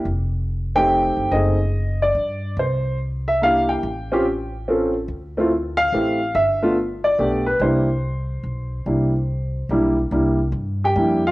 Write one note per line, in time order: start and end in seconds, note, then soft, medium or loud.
0.05 1.13 F1 medium
0.75 1.29 A3 medium
0.75 1.29 C4 medium
0.75 1.29 D#4 medium
0.75 1.29 G4 medium
0.75 1.33 G5 loud
1.17 1.30 G1 medium
1.31 2.11 F#1 medium
1.31 1.57 A3 soft
1.31 1.57 C4 soft
1.31 1.57 D#4 medium
1.31 1.58 G#4 medium
1.31 2.03 D#5 medium
2.02 2.54 D5 medium
2.15 2.54 G2 medium
2.57 3.79 C2 medium
2.57 2.97 C5 medium
3.28 3.41 E5 medium
3.42 3.83 A#3 soft
3.42 3.84 D4 soft
3.42 3.84 E4 soft
3.42 3.84 G4 medium
3.42 3.68 F5 loud
3.69 4.91 G5 medium
3.83 5.05 A1 medium
4.12 4.24 C4 medium
4.12 4.24 C#4 medium
4.12 4.24 F4 medium
4.12 4.25 G4 medium
4.68 4.93 C4 medium
4.68 4.93 C#4 medium
4.68 4.93 F4 soft
4.68 4.94 A4 medium
5.08 5.88 D2 medium
5.37 5.50 A3 medium
5.37 5.50 C4 medium
5.37 5.51 E4 medium
5.37 5.51 F4 medium
5.77 6.36 F5 loud
5.92 6.32 A1 medium
5.92 6.18 A3 soft
5.92 6.19 C4 soft
5.92 6.19 E4 soft
5.92 6.19 G4 soft
6.35 7.15 G1 medium
6.35 6.74 E5 medium
6.62 6.75 A3 medium
6.62 6.75 B3 medium
6.62 6.75 D4 medium
6.62 6.76 F4 medium
7.04 7.43 D5 medium
7.19 7.58 B1 medium
7.19 7.44 A3 medium
7.19 7.44 B3 soft
7.19 7.44 D4 soft
7.19 7.44 G4 medium
7.46 7.60 B4 medium
7.59 8.40 C2 medium
7.59 7.86 G3 medium
7.59 7.86 A#3 medium
7.59 7.86 D4 soft
7.59 7.87 E4 medium
7.59 9.67 C5 medium
8.43 8.83 B1 medium
8.86 9.66 C2 medium
8.86 9.11 G3 soft
8.86 9.12 A#3 soft
8.86 9.12 D4 soft
8.86 9.12 E4 medium
9.69 10.09 B1 medium
9.69 9.96 G3 medium
9.69 9.96 A#3 medium
9.69 9.96 D4 medium
9.69 9.96 E4 medium
10.11 10.51 C2 medium
10.11 10.37 G3 medium
10.11 10.37 A#3 medium
10.11 10.37 D4 soft
10.11 10.38 E4 medium
10.52 10.94 G2 medium
10.84 11.22 G4 medium
10.84 11.23 G5 medium
10.96 11.31 F2 medium
10.96 11.21 G3 soft
10.96 11.22 A#3 soft
10.96 11.22 D4 soft
10.96 11.22 E4 medium
11.27 11.31 F4 medium
11.27 11.31 F5 medium